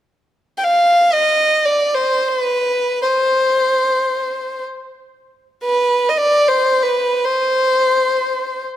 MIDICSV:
0, 0, Header, 1, 2, 480
1, 0, Start_track
1, 0, Tempo, 500000
1, 8417, End_track
2, 0, Start_track
2, 0, Title_t, "Violin"
2, 0, Program_c, 0, 40
2, 554, Note_on_c, 0, 79, 55
2, 617, Note_on_c, 0, 77, 70
2, 631, Note_off_c, 0, 79, 0
2, 1090, Note_on_c, 0, 75, 72
2, 1105, Note_off_c, 0, 77, 0
2, 1587, Note_on_c, 0, 74, 63
2, 1601, Note_off_c, 0, 75, 0
2, 1865, Note_on_c, 0, 72, 60
2, 1879, Note_off_c, 0, 74, 0
2, 2189, Note_off_c, 0, 72, 0
2, 2189, Note_on_c, 0, 72, 61
2, 2295, Note_off_c, 0, 72, 0
2, 2295, Note_on_c, 0, 71, 61
2, 2895, Note_off_c, 0, 71, 0
2, 2901, Note_on_c, 0, 72, 64
2, 4444, Note_off_c, 0, 72, 0
2, 5414, Note_on_c, 0, 71, 69
2, 5847, Note_on_c, 0, 75, 51
2, 5861, Note_off_c, 0, 71, 0
2, 5930, Note_on_c, 0, 74, 73
2, 5944, Note_off_c, 0, 75, 0
2, 6221, Note_on_c, 0, 72, 69
2, 6235, Note_off_c, 0, 74, 0
2, 6554, Note_on_c, 0, 71, 66
2, 6569, Note_off_c, 0, 72, 0
2, 6962, Note_on_c, 0, 72, 69
2, 6976, Note_off_c, 0, 71, 0
2, 8286, Note_off_c, 0, 72, 0
2, 8417, End_track
0, 0, End_of_file